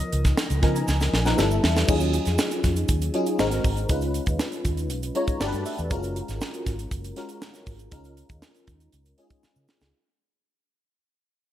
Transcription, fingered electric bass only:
0.13 0.32 C#2 medium
0.50 0.60 C#2 medium
0.63 0.82 C#3 medium
0.88 1.07 C#2 loud
1.13 1.32 A#1 medium
1.38 1.58 G1 medium
1.63 1.83 E2 medium
1.89 2.17 D#2 loud
2.27 2.36 F2 medium
2.64 2.83 F2 medium
2.89 3.08 D#2 loud
3.40 3.59 G#1 loud
3.65 3.84 G#1 medium
3.90 4.18 C#2 loud
4.27 4.37 D#2 medium
4.65 4.91 D#2 medium
4.91 5.10 B1 medium
5.41 5.50 G1 loud
5.53 5.63 G2 loud
5.79 5.88 E2 loud
5.91 6.20 F#1 loud
6.29 6.38 G#1 medium
6.67 6.86 G#1 medium
6.91 7.11 F#1 loud
7.67 7.86 G#1 medium
7.92 8.21 C#2 loud
8.30 8.39 D#2 loud
8.68 8.87 D#2 medium
8.93 9.12 C#2 loud
9.44 muted fingered electric bass stroke soft
9.56 9.66 C#3 medium
9.81 9.91 C#2 loud

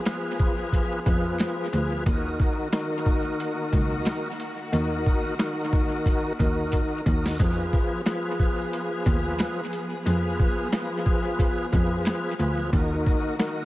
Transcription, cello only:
1.06 1.31 F2 loud
1.73 1.98 D2 loud
2.06 2.31 D#2 loud
3.73 3.98 C#2 medium
4.73 4.98 D#2 loud
6.40 6.65 D#2 loud
7.06 7.31 D#2 loud
7.40 7.65 F2 loud
9.06 9.31 D#2 medium
10.06 10.31 F2 loud
11.73 11.98 F2 medium
12.39 12.65 D2 medium
12.73 12.98 D#2 loud

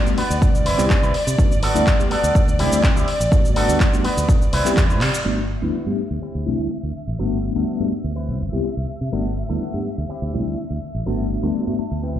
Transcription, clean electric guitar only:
0.18 0.42 B3 medium
0.18 0.42 F#4 medium
0.18 0.42 B4 medium
0.66 0.84 C4 medium
0.66 0.84 E4 medium
0.66 0.84 B4 loud
1.02 1.14 C4 medium
1.02 1.14 E4 medium
1.02 1.15 B4 loud
1.27 muted clean electric guitar stroke soft
1.62 1.87 B3 loud
1.62 1.87 F#4 medium
1.62 1.87 A4 loud
2.11 2.35 B3 medium
2.11 2.35 F#4 medium
2.11 2.35 A4 medium
2.59 2.78 C4 loud
2.59 2.78 E4 medium
2.59 2.78 G4 loud
2.96 3.08 C4 medium
2.96 3.08 E4 medium
2.96 3.08 G4 medium
3.20 muted clean electric guitar stroke soft
3.56 3.80 B3 loud
3.56 3.81 F#4 medium
3.56 3.81 A4 loud
4.04 4.29 B3 medium
4.04 4.29 F#4 medium
4.04 4.29 B4 loud
4.53 4.71 C4 loud
4.53 4.71 E4 medium
4.53 4.72 B4 loud
4.90 5.01 C4 medium
4.90 5.01 E4 medium
4.90 5.02 B4 medium
5.14 muted clean electric guitar stroke soft
5.25 5.44 B3 medium
5.25 5.44 F#4 medium
5.25 5.44 A4 medium
5.62 5.92 B3 medium
5.62 5.92 F#4 medium
5.62 5.92 B4 medium
6.22 6.46 C4 medium
6.22 6.47 E4 medium
6.22 6.47 G4 medium
6.70 muted clean electric guitar stroke medium
6.83 muted clean electric guitar stroke soft
7.19 7.37 B3 medium
7.19 7.38 F#4 medium
7.19 7.38 A4 loud
7.55 7.86 B3 medium
7.55 7.86 F#4 medium
7.55 7.86 A4 medium
8.15 8.40 C4 medium
8.15 8.40 E4 medium
8.15 8.40 B4 medium
8.64 muted clean electric guitar stroke medium
8.77 muted clean electric guitar stroke soft
9.12 9.31 B3 medium
9.12 9.31 F#4 medium
9.12 9.31 A4 loud
9.49 9.79 B3 medium
9.49 9.79 F#4 medium
9.49 9.79 A4 medium
10.09 10.34 C4 medium
10.09 10.34 E4 medium
10.09 10.34 G4 medium
10.58 muted clean electric guitar stroke medium
10.70 muted clean electric guitar stroke soft
11.06 11.25 B3 loud
11.06 11.25 F#4 medium
11.06 11.25 A4 loud
11.43 11.73 B3 medium
11.43 11.73 F#4 medium
11.43 11.73 A4 medium
11.79 12.01 A5 medium
12.02 12.20 C4 medium
12.02 12.20 E4 medium
12.02 12.20 B4 medium
12.02 12.20 G5 medium

